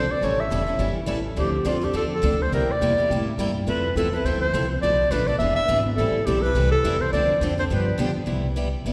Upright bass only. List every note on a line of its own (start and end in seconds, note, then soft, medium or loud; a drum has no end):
0.10 muted upright bass stroke soft
0.22 0.50 A1 medium
0.51 0.78 E1 medium
0.79 0.95 G1 medium
1.08 1.36 A1 medium
1.37 1.64 D2 medium
1.65 1.93 F2 medium
1.94 2.22 E2 medium
2.23 2.51 D2 medium
2.52 2.68 C2 medium
2.70 muted upright bass stroke soft
2.81 3.09 E2 medium
3.10 3.37 A2 medium
3.38 3.66 G2 medium
3.67 3.95 F2 medium
3.96 4.24 E2 loud
4.24 4.53 D2 medium
4.53 4.81 C2 medium
4.82 5.10 B1 medium
5.11 5.39 A1 medium
5.39 5.56 E1 medium
5.57 muted upright bass stroke soft
5.69 5.97 G#1 loud
5.98 6.26 A1 medium
6.27 6.54 B1 medium
6.55 6.83 C2 medium
6.84 7.12 E2 medium
7.13 7.29 D2 medium
7.29 muted upright bass stroke soft
7.41 7.69 F2 medium
7.70 7.98 G2 medium
7.98 8.26 B2 medium
8.27 8.73 C2 medium
8.85 8.93 G1 medium